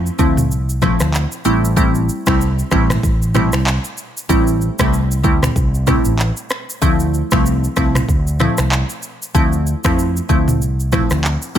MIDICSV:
0, 0, Header, 1, 4, 480
1, 0, Start_track
1, 0, Key_signature, -1, "minor"
1, 0, Tempo, 631579
1, 1344, Time_signature, 4, 2, 24, 8
1, 8802, End_track
2, 0, Start_track
2, 0, Title_t, "Synth pluck"
2, 0, Program_c, 0, 84
2, 142, Note_on_c, 0, 53, 81
2, 142, Note_on_c, 0, 57, 71
2, 145, Note_on_c, 0, 60, 74
2, 146, Note_on_c, 0, 64, 89
2, 330, Note_off_c, 0, 53, 0
2, 330, Note_off_c, 0, 57, 0
2, 332, Note_off_c, 0, 60, 0
2, 332, Note_off_c, 0, 64, 0
2, 622, Note_on_c, 0, 53, 84
2, 624, Note_on_c, 0, 57, 78
2, 625, Note_on_c, 0, 60, 74
2, 626, Note_on_c, 0, 64, 90
2, 810, Note_off_c, 0, 53, 0
2, 811, Note_off_c, 0, 57, 0
2, 811, Note_off_c, 0, 60, 0
2, 812, Note_off_c, 0, 64, 0
2, 1102, Note_on_c, 0, 55, 96
2, 1103, Note_on_c, 0, 57, 92
2, 1105, Note_on_c, 0, 60, 89
2, 1106, Note_on_c, 0, 64, 112
2, 1327, Note_off_c, 0, 55, 0
2, 1328, Note_off_c, 0, 57, 0
2, 1328, Note_off_c, 0, 60, 0
2, 1329, Note_off_c, 0, 64, 0
2, 1341, Note_on_c, 0, 55, 93
2, 1343, Note_on_c, 0, 57, 84
2, 1343, Note_on_c, 0, 60, 88
2, 1346, Note_on_c, 0, 64, 106
2, 1688, Note_off_c, 0, 55, 0
2, 1689, Note_off_c, 0, 57, 0
2, 1690, Note_off_c, 0, 60, 0
2, 1691, Note_off_c, 0, 64, 0
2, 1722, Note_on_c, 0, 55, 78
2, 1724, Note_on_c, 0, 57, 71
2, 1725, Note_on_c, 0, 60, 76
2, 1727, Note_on_c, 0, 64, 90
2, 1889, Note_off_c, 0, 55, 0
2, 1890, Note_off_c, 0, 57, 0
2, 1891, Note_off_c, 0, 60, 0
2, 1892, Note_off_c, 0, 64, 0
2, 2065, Note_on_c, 0, 55, 84
2, 2066, Note_on_c, 0, 57, 75
2, 2068, Note_on_c, 0, 60, 75
2, 2070, Note_on_c, 0, 64, 92
2, 2251, Note_off_c, 0, 55, 0
2, 2252, Note_off_c, 0, 57, 0
2, 2253, Note_off_c, 0, 60, 0
2, 2254, Note_off_c, 0, 64, 0
2, 2542, Note_on_c, 0, 55, 80
2, 2543, Note_on_c, 0, 57, 75
2, 2545, Note_on_c, 0, 60, 75
2, 2547, Note_on_c, 0, 64, 94
2, 2730, Note_off_c, 0, 55, 0
2, 2731, Note_off_c, 0, 57, 0
2, 2731, Note_off_c, 0, 60, 0
2, 2733, Note_off_c, 0, 64, 0
2, 3262, Note_on_c, 0, 55, 95
2, 3263, Note_on_c, 0, 57, 86
2, 3264, Note_on_c, 0, 60, 88
2, 3266, Note_on_c, 0, 64, 108
2, 3609, Note_off_c, 0, 55, 0
2, 3609, Note_off_c, 0, 57, 0
2, 3610, Note_off_c, 0, 60, 0
2, 3611, Note_off_c, 0, 64, 0
2, 3641, Note_on_c, 0, 55, 84
2, 3643, Note_on_c, 0, 57, 75
2, 3644, Note_on_c, 0, 60, 74
2, 3645, Note_on_c, 0, 64, 86
2, 3809, Note_off_c, 0, 55, 0
2, 3810, Note_off_c, 0, 57, 0
2, 3810, Note_off_c, 0, 60, 0
2, 3811, Note_off_c, 0, 64, 0
2, 3979, Note_on_c, 0, 55, 83
2, 3981, Note_on_c, 0, 57, 72
2, 3983, Note_on_c, 0, 60, 73
2, 3985, Note_on_c, 0, 64, 91
2, 4169, Note_off_c, 0, 55, 0
2, 4170, Note_off_c, 0, 57, 0
2, 4171, Note_off_c, 0, 60, 0
2, 4171, Note_off_c, 0, 64, 0
2, 4460, Note_on_c, 0, 55, 82
2, 4462, Note_on_c, 0, 57, 76
2, 4463, Note_on_c, 0, 60, 76
2, 4465, Note_on_c, 0, 64, 93
2, 4649, Note_off_c, 0, 55, 0
2, 4650, Note_off_c, 0, 57, 0
2, 4651, Note_off_c, 0, 60, 0
2, 4652, Note_off_c, 0, 64, 0
2, 5180, Note_on_c, 0, 53, 99
2, 5182, Note_on_c, 0, 57, 88
2, 5184, Note_on_c, 0, 60, 88
2, 5186, Note_on_c, 0, 64, 101
2, 5528, Note_off_c, 0, 53, 0
2, 5529, Note_off_c, 0, 57, 0
2, 5530, Note_off_c, 0, 60, 0
2, 5531, Note_off_c, 0, 64, 0
2, 5561, Note_on_c, 0, 53, 82
2, 5562, Note_on_c, 0, 57, 76
2, 5564, Note_on_c, 0, 60, 75
2, 5566, Note_on_c, 0, 64, 91
2, 5729, Note_off_c, 0, 53, 0
2, 5729, Note_off_c, 0, 57, 0
2, 5730, Note_off_c, 0, 60, 0
2, 5731, Note_off_c, 0, 64, 0
2, 5901, Note_on_c, 0, 53, 80
2, 5903, Note_on_c, 0, 57, 73
2, 5903, Note_on_c, 0, 60, 71
2, 5906, Note_on_c, 0, 64, 92
2, 6089, Note_off_c, 0, 53, 0
2, 6090, Note_off_c, 0, 57, 0
2, 6091, Note_off_c, 0, 60, 0
2, 6092, Note_off_c, 0, 64, 0
2, 6382, Note_on_c, 0, 53, 80
2, 6384, Note_on_c, 0, 57, 75
2, 6385, Note_on_c, 0, 60, 73
2, 6387, Note_on_c, 0, 64, 90
2, 6570, Note_off_c, 0, 53, 0
2, 6571, Note_off_c, 0, 57, 0
2, 6571, Note_off_c, 0, 60, 0
2, 6572, Note_off_c, 0, 64, 0
2, 7103, Note_on_c, 0, 53, 95
2, 7103, Note_on_c, 0, 57, 85
2, 7104, Note_on_c, 0, 60, 85
2, 7106, Note_on_c, 0, 64, 107
2, 7449, Note_off_c, 0, 53, 0
2, 7450, Note_off_c, 0, 57, 0
2, 7450, Note_off_c, 0, 60, 0
2, 7451, Note_off_c, 0, 64, 0
2, 7481, Note_on_c, 0, 53, 81
2, 7482, Note_on_c, 0, 57, 74
2, 7483, Note_on_c, 0, 60, 75
2, 7486, Note_on_c, 0, 64, 89
2, 7649, Note_off_c, 0, 53, 0
2, 7649, Note_off_c, 0, 57, 0
2, 7650, Note_off_c, 0, 60, 0
2, 7651, Note_off_c, 0, 64, 0
2, 7821, Note_on_c, 0, 53, 81
2, 7822, Note_on_c, 0, 57, 74
2, 7823, Note_on_c, 0, 60, 74
2, 7825, Note_on_c, 0, 64, 93
2, 8009, Note_off_c, 0, 53, 0
2, 8010, Note_off_c, 0, 57, 0
2, 8011, Note_off_c, 0, 60, 0
2, 8012, Note_off_c, 0, 64, 0
2, 8301, Note_on_c, 0, 53, 81
2, 8303, Note_on_c, 0, 57, 77
2, 8304, Note_on_c, 0, 60, 73
2, 8306, Note_on_c, 0, 64, 92
2, 8490, Note_off_c, 0, 53, 0
2, 8490, Note_off_c, 0, 57, 0
2, 8491, Note_off_c, 0, 60, 0
2, 8492, Note_off_c, 0, 64, 0
2, 8802, End_track
3, 0, Start_track
3, 0, Title_t, "Fretless electric bass"
3, 0, Program_c, 1, 35
3, 145, Note_on_c, 1, 38, 86
3, 385, Note_off_c, 1, 38, 0
3, 385, Note_on_c, 1, 36, 99
3, 675, Note_off_c, 1, 36, 0
3, 764, Note_on_c, 1, 38, 92
3, 947, Note_off_c, 1, 38, 0
3, 1105, Note_on_c, 1, 33, 99
3, 1579, Note_off_c, 1, 33, 0
3, 1724, Note_on_c, 1, 36, 79
3, 1985, Note_off_c, 1, 36, 0
3, 2064, Note_on_c, 1, 33, 92
3, 2248, Note_off_c, 1, 33, 0
3, 2306, Note_on_c, 1, 33, 102
3, 2683, Note_off_c, 1, 33, 0
3, 2683, Note_on_c, 1, 36, 88
3, 2867, Note_off_c, 1, 36, 0
3, 3265, Note_on_c, 1, 33, 110
3, 3555, Note_off_c, 1, 33, 0
3, 3644, Note_on_c, 1, 36, 78
3, 3984, Note_off_c, 1, 36, 0
3, 3984, Note_on_c, 1, 38, 100
3, 4168, Note_off_c, 1, 38, 0
3, 4225, Note_on_c, 1, 36, 106
3, 4516, Note_off_c, 1, 36, 0
3, 4604, Note_on_c, 1, 33, 95
3, 4788, Note_off_c, 1, 33, 0
3, 5185, Note_on_c, 1, 38, 105
3, 5475, Note_off_c, 1, 38, 0
3, 5563, Note_on_c, 1, 36, 80
3, 5824, Note_off_c, 1, 36, 0
3, 5904, Note_on_c, 1, 36, 92
3, 6088, Note_off_c, 1, 36, 0
3, 6146, Note_on_c, 1, 38, 98
3, 6436, Note_off_c, 1, 38, 0
3, 6524, Note_on_c, 1, 36, 93
3, 6708, Note_off_c, 1, 36, 0
3, 7104, Note_on_c, 1, 38, 104
3, 7395, Note_off_c, 1, 38, 0
3, 7483, Note_on_c, 1, 41, 87
3, 7744, Note_off_c, 1, 41, 0
3, 7823, Note_on_c, 1, 38, 88
3, 8064, Note_off_c, 1, 38, 0
3, 8064, Note_on_c, 1, 36, 99
3, 8355, Note_off_c, 1, 36, 0
3, 8443, Note_on_c, 1, 38, 97
3, 8627, Note_off_c, 1, 38, 0
3, 8802, End_track
4, 0, Start_track
4, 0, Title_t, "Drums"
4, 49, Note_on_c, 9, 82, 60
4, 125, Note_off_c, 9, 82, 0
4, 143, Note_on_c, 9, 82, 55
4, 145, Note_on_c, 9, 36, 90
4, 219, Note_off_c, 9, 82, 0
4, 221, Note_off_c, 9, 36, 0
4, 283, Note_on_c, 9, 45, 98
4, 289, Note_on_c, 9, 82, 95
4, 359, Note_off_c, 9, 45, 0
4, 365, Note_off_c, 9, 82, 0
4, 390, Note_on_c, 9, 82, 67
4, 466, Note_off_c, 9, 82, 0
4, 528, Note_on_c, 9, 82, 53
4, 604, Note_off_c, 9, 82, 0
4, 622, Note_on_c, 9, 82, 58
4, 623, Note_on_c, 9, 45, 99
4, 626, Note_on_c, 9, 36, 100
4, 628, Note_on_c, 9, 37, 89
4, 635, Note_on_c, 9, 26, 68
4, 698, Note_off_c, 9, 82, 0
4, 699, Note_off_c, 9, 45, 0
4, 702, Note_off_c, 9, 36, 0
4, 704, Note_off_c, 9, 37, 0
4, 711, Note_off_c, 9, 26, 0
4, 759, Note_on_c, 9, 82, 101
4, 763, Note_on_c, 9, 37, 88
4, 770, Note_on_c, 9, 26, 73
4, 835, Note_off_c, 9, 82, 0
4, 839, Note_off_c, 9, 37, 0
4, 846, Note_off_c, 9, 26, 0
4, 866, Note_on_c, 9, 39, 96
4, 873, Note_on_c, 9, 82, 74
4, 942, Note_off_c, 9, 39, 0
4, 949, Note_off_c, 9, 82, 0
4, 1002, Note_on_c, 9, 82, 55
4, 1078, Note_off_c, 9, 82, 0
4, 1101, Note_on_c, 9, 82, 53
4, 1177, Note_off_c, 9, 82, 0
4, 1253, Note_on_c, 9, 82, 94
4, 1329, Note_off_c, 9, 82, 0
4, 1345, Note_on_c, 9, 36, 125
4, 1346, Note_on_c, 9, 82, 87
4, 1421, Note_off_c, 9, 36, 0
4, 1422, Note_off_c, 9, 82, 0
4, 1481, Note_on_c, 9, 82, 59
4, 1557, Note_off_c, 9, 82, 0
4, 1589, Note_on_c, 9, 82, 57
4, 1665, Note_off_c, 9, 82, 0
4, 1720, Note_on_c, 9, 82, 92
4, 1724, Note_on_c, 9, 36, 98
4, 1726, Note_on_c, 9, 37, 122
4, 1733, Note_on_c, 9, 26, 99
4, 1796, Note_off_c, 9, 82, 0
4, 1800, Note_off_c, 9, 36, 0
4, 1802, Note_off_c, 9, 37, 0
4, 1809, Note_off_c, 9, 26, 0
4, 1833, Note_on_c, 9, 82, 78
4, 1909, Note_off_c, 9, 82, 0
4, 1967, Note_on_c, 9, 82, 59
4, 2043, Note_off_c, 9, 82, 0
4, 2061, Note_on_c, 9, 82, 57
4, 2063, Note_on_c, 9, 37, 91
4, 2064, Note_on_c, 9, 36, 93
4, 2070, Note_on_c, 9, 26, 72
4, 2137, Note_off_c, 9, 82, 0
4, 2139, Note_off_c, 9, 37, 0
4, 2140, Note_off_c, 9, 36, 0
4, 2146, Note_off_c, 9, 26, 0
4, 2203, Note_on_c, 9, 45, 95
4, 2205, Note_on_c, 9, 37, 97
4, 2209, Note_on_c, 9, 82, 95
4, 2213, Note_on_c, 9, 26, 82
4, 2279, Note_off_c, 9, 45, 0
4, 2281, Note_off_c, 9, 37, 0
4, 2285, Note_off_c, 9, 82, 0
4, 2289, Note_off_c, 9, 26, 0
4, 2306, Note_on_c, 9, 36, 90
4, 2310, Note_on_c, 9, 82, 69
4, 2382, Note_off_c, 9, 36, 0
4, 2386, Note_off_c, 9, 82, 0
4, 2449, Note_on_c, 9, 82, 56
4, 2525, Note_off_c, 9, 82, 0
4, 2543, Note_on_c, 9, 82, 57
4, 2544, Note_on_c, 9, 45, 96
4, 2549, Note_on_c, 9, 37, 91
4, 2556, Note_on_c, 9, 26, 67
4, 2619, Note_off_c, 9, 82, 0
4, 2620, Note_off_c, 9, 45, 0
4, 2625, Note_off_c, 9, 37, 0
4, 2632, Note_off_c, 9, 26, 0
4, 2680, Note_on_c, 9, 82, 99
4, 2684, Note_on_c, 9, 37, 85
4, 2691, Note_on_c, 9, 26, 73
4, 2756, Note_off_c, 9, 82, 0
4, 2760, Note_off_c, 9, 37, 0
4, 2767, Note_off_c, 9, 26, 0
4, 2787, Note_on_c, 9, 39, 100
4, 2794, Note_on_c, 9, 82, 74
4, 2863, Note_off_c, 9, 39, 0
4, 2870, Note_off_c, 9, 82, 0
4, 2922, Note_on_c, 9, 82, 58
4, 2998, Note_off_c, 9, 82, 0
4, 3021, Note_on_c, 9, 82, 53
4, 3097, Note_off_c, 9, 82, 0
4, 3172, Note_on_c, 9, 82, 99
4, 3248, Note_off_c, 9, 82, 0
4, 3265, Note_on_c, 9, 36, 123
4, 3266, Note_on_c, 9, 82, 89
4, 3341, Note_off_c, 9, 36, 0
4, 3342, Note_off_c, 9, 82, 0
4, 3399, Note_on_c, 9, 82, 64
4, 3475, Note_off_c, 9, 82, 0
4, 3507, Note_on_c, 9, 82, 55
4, 3583, Note_off_c, 9, 82, 0
4, 3639, Note_on_c, 9, 82, 91
4, 3644, Note_on_c, 9, 36, 102
4, 3645, Note_on_c, 9, 37, 123
4, 3652, Note_on_c, 9, 26, 96
4, 3715, Note_off_c, 9, 82, 0
4, 3720, Note_off_c, 9, 36, 0
4, 3721, Note_off_c, 9, 37, 0
4, 3728, Note_off_c, 9, 26, 0
4, 3750, Note_on_c, 9, 82, 81
4, 3826, Note_off_c, 9, 82, 0
4, 3888, Note_on_c, 9, 82, 63
4, 3964, Note_off_c, 9, 82, 0
4, 3981, Note_on_c, 9, 82, 58
4, 3984, Note_on_c, 9, 36, 96
4, 4057, Note_off_c, 9, 82, 0
4, 4060, Note_off_c, 9, 36, 0
4, 4123, Note_on_c, 9, 45, 92
4, 4125, Note_on_c, 9, 37, 101
4, 4129, Note_on_c, 9, 82, 94
4, 4133, Note_on_c, 9, 26, 80
4, 4199, Note_off_c, 9, 45, 0
4, 4201, Note_off_c, 9, 37, 0
4, 4205, Note_off_c, 9, 82, 0
4, 4209, Note_off_c, 9, 26, 0
4, 4225, Note_on_c, 9, 36, 92
4, 4228, Note_on_c, 9, 82, 71
4, 4301, Note_off_c, 9, 36, 0
4, 4304, Note_off_c, 9, 82, 0
4, 4366, Note_on_c, 9, 82, 54
4, 4442, Note_off_c, 9, 82, 0
4, 4461, Note_on_c, 9, 82, 60
4, 4462, Note_on_c, 9, 45, 93
4, 4465, Note_on_c, 9, 36, 102
4, 4467, Note_on_c, 9, 37, 87
4, 4474, Note_on_c, 9, 26, 74
4, 4537, Note_off_c, 9, 82, 0
4, 4538, Note_off_c, 9, 45, 0
4, 4541, Note_off_c, 9, 36, 0
4, 4543, Note_off_c, 9, 37, 0
4, 4550, Note_off_c, 9, 26, 0
4, 4597, Note_on_c, 9, 82, 99
4, 4673, Note_off_c, 9, 82, 0
4, 4705, Note_on_c, 9, 39, 97
4, 4711, Note_on_c, 9, 82, 73
4, 4781, Note_off_c, 9, 39, 0
4, 4787, Note_off_c, 9, 82, 0
4, 4840, Note_on_c, 9, 82, 55
4, 4916, Note_off_c, 9, 82, 0
4, 4938, Note_on_c, 9, 82, 53
4, 4944, Note_on_c, 9, 37, 97
4, 4952, Note_on_c, 9, 26, 82
4, 5014, Note_off_c, 9, 82, 0
4, 5020, Note_off_c, 9, 37, 0
4, 5028, Note_off_c, 9, 26, 0
4, 5091, Note_on_c, 9, 82, 96
4, 5167, Note_off_c, 9, 82, 0
4, 5183, Note_on_c, 9, 82, 88
4, 5184, Note_on_c, 9, 36, 122
4, 5259, Note_off_c, 9, 82, 0
4, 5260, Note_off_c, 9, 36, 0
4, 5317, Note_on_c, 9, 82, 58
4, 5393, Note_off_c, 9, 82, 0
4, 5427, Note_on_c, 9, 82, 55
4, 5503, Note_off_c, 9, 82, 0
4, 5558, Note_on_c, 9, 82, 94
4, 5563, Note_on_c, 9, 36, 105
4, 5563, Note_on_c, 9, 37, 125
4, 5571, Note_on_c, 9, 26, 99
4, 5634, Note_off_c, 9, 82, 0
4, 5639, Note_off_c, 9, 36, 0
4, 5639, Note_off_c, 9, 37, 0
4, 5647, Note_off_c, 9, 26, 0
4, 5670, Note_on_c, 9, 82, 79
4, 5746, Note_off_c, 9, 82, 0
4, 5807, Note_on_c, 9, 82, 60
4, 5883, Note_off_c, 9, 82, 0
4, 5902, Note_on_c, 9, 82, 58
4, 5903, Note_on_c, 9, 37, 95
4, 5904, Note_on_c, 9, 36, 98
4, 5911, Note_on_c, 9, 26, 74
4, 5978, Note_off_c, 9, 82, 0
4, 5979, Note_off_c, 9, 37, 0
4, 5980, Note_off_c, 9, 36, 0
4, 5987, Note_off_c, 9, 26, 0
4, 6043, Note_on_c, 9, 45, 93
4, 6045, Note_on_c, 9, 37, 97
4, 6048, Note_on_c, 9, 82, 96
4, 6052, Note_on_c, 9, 26, 81
4, 6119, Note_off_c, 9, 45, 0
4, 6121, Note_off_c, 9, 37, 0
4, 6124, Note_off_c, 9, 82, 0
4, 6128, Note_off_c, 9, 26, 0
4, 6145, Note_on_c, 9, 36, 90
4, 6149, Note_on_c, 9, 82, 66
4, 6221, Note_off_c, 9, 36, 0
4, 6225, Note_off_c, 9, 82, 0
4, 6287, Note_on_c, 9, 82, 58
4, 6363, Note_off_c, 9, 82, 0
4, 6380, Note_on_c, 9, 82, 57
4, 6381, Note_on_c, 9, 45, 96
4, 6386, Note_on_c, 9, 37, 85
4, 6394, Note_on_c, 9, 26, 72
4, 6456, Note_off_c, 9, 82, 0
4, 6457, Note_off_c, 9, 45, 0
4, 6462, Note_off_c, 9, 37, 0
4, 6470, Note_off_c, 9, 26, 0
4, 6518, Note_on_c, 9, 82, 101
4, 6522, Note_on_c, 9, 37, 92
4, 6530, Note_on_c, 9, 26, 72
4, 6594, Note_off_c, 9, 82, 0
4, 6598, Note_off_c, 9, 37, 0
4, 6606, Note_off_c, 9, 26, 0
4, 6626, Note_on_c, 9, 39, 102
4, 6632, Note_on_c, 9, 82, 69
4, 6702, Note_off_c, 9, 39, 0
4, 6708, Note_off_c, 9, 82, 0
4, 6761, Note_on_c, 9, 82, 55
4, 6837, Note_off_c, 9, 82, 0
4, 6860, Note_on_c, 9, 82, 51
4, 6936, Note_off_c, 9, 82, 0
4, 7011, Note_on_c, 9, 82, 97
4, 7087, Note_off_c, 9, 82, 0
4, 7104, Note_on_c, 9, 36, 127
4, 7105, Note_on_c, 9, 82, 84
4, 7180, Note_off_c, 9, 36, 0
4, 7181, Note_off_c, 9, 82, 0
4, 7240, Note_on_c, 9, 82, 60
4, 7316, Note_off_c, 9, 82, 0
4, 7347, Note_on_c, 9, 82, 57
4, 7423, Note_off_c, 9, 82, 0
4, 7479, Note_on_c, 9, 82, 94
4, 7483, Note_on_c, 9, 36, 101
4, 7485, Note_on_c, 9, 37, 125
4, 7492, Note_on_c, 9, 26, 100
4, 7555, Note_off_c, 9, 82, 0
4, 7559, Note_off_c, 9, 36, 0
4, 7561, Note_off_c, 9, 37, 0
4, 7568, Note_off_c, 9, 26, 0
4, 7592, Note_on_c, 9, 82, 78
4, 7668, Note_off_c, 9, 82, 0
4, 7727, Note_on_c, 9, 82, 62
4, 7803, Note_off_c, 9, 82, 0
4, 7821, Note_on_c, 9, 82, 55
4, 7824, Note_on_c, 9, 36, 90
4, 7897, Note_off_c, 9, 82, 0
4, 7900, Note_off_c, 9, 36, 0
4, 7963, Note_on_c, 9, 45, 98
4, 7969, Note_on_c, 9, 82, 98
4, 8039, Note_off_c, 9, 45, 0
4, 8045, Note_off_c, 9, 82, 0
4, 8070, Note_on_c, 9, 82, 69
4, 8146, Note_off_c, 9, 82, 0
4, 8207, Note_on_c, 9, 82, 55
4, 8283, Note_off_c, 9, 82, 0
4, 8302, Note_on_c, 9, 45, 94
4, 8302, Note_on_c, 9, 82, 60
4, 8305, Note_on_c, 9, 36, 104
4, 8307, Note_on_c, 9, 37, 90
4, 8315, Note_on_c, 9, 26, 69
4, 8378, Note_off_c, 9, 45, 0
4, 8378, Note_off_c, 9, 82, 0
4, 8381, Note_off_c, 9, 36, 0
4, 8383, Note_off_c, 9, 37, 0
4, 8391, Note_off_c, 9, 26, 0
4, 8438, Note_on_c, 9, 82, 94
4, 8443, Note_on_c, 9, 37, 92
4, 8450, Note_on_c, 9, 26, 72
4, 8514, Note_off_c, 9, 82, 0
4, 8519, Note_off_c, 9, 37, 0
4, 8526, Note_off_c, 9, 26, 0
4, 8545, Note_on_c, 9, 39, 100
4, 8552, Note_on_c, 9, 82, 73
4, 8621, Note_off_c, 9, 39, 0
4, 8628, Note_off_c, 9, 82, 0
4, 8680, Note_on_c, 9, 82, 56
4, 8756, Note_off_c, 9, 82, 0
4, 8779, Note_on_c, 9, 82, 52
4, 8802, Note_off_c, 9, 82, 0
4, 8802, End_track
0, 0, End_of_file